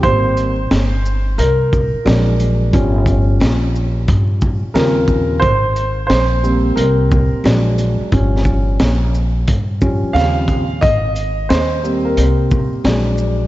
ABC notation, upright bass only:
X:1
M:4/4
L:1/16
Q:"Swing 16ths" 1/4=89
K:Ab
V:1 name="Upright bass" clef=bass
A,,,4 G,,,4 C,,3 z B,,,4 | G,,,4 B,,,4 G,,3 z E,,4 | A,,,4 B,,,4 C,,3 z B,,,3 z | G,,,4 B,,,4 G,,3 z E,,4 |
A,,,4 E,,4 C,,3 z B,,,4 |]